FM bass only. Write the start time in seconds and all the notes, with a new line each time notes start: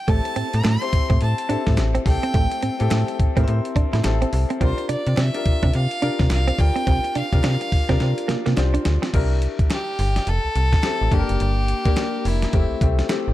0.08 A1
0.37 A2
0.54 A2
0.65 A2
0.93 A2
1.10 A2
1.22 A2
1.50 A2
1.67 A2
1.79 A1
2.06 C2
2.35 A1
2.63 A2
2.81 A2
2.92 A2
3.20 A2
3.37 A2
3.48 A2
3.76 A2
3.94 A2
4.05 A1
4.33 C2
4.61 C2
4.90 C3
5.07 C3
5.18 C3
5.46 C3
5.63 C3
5.75 C3
6.03 C3
6.20 C3
6.31 C2
6.59 D2
6.87 C2
7.16 C3
7.33 C3
7.45 C3
7.72 C3
7.90 C3
8.01 C3
8.30 C3
8.47 C3
8.58 C2
8.86 D2
9.14 C2
9.99 G1
10.27 F1
10.45 C2
10.56 C2
11.01 A1
11.12 G1
11.30 F#1
11.41 G1
12.25 F1
12.54 F1
12.71 C2
12.82 C2
13.28 A1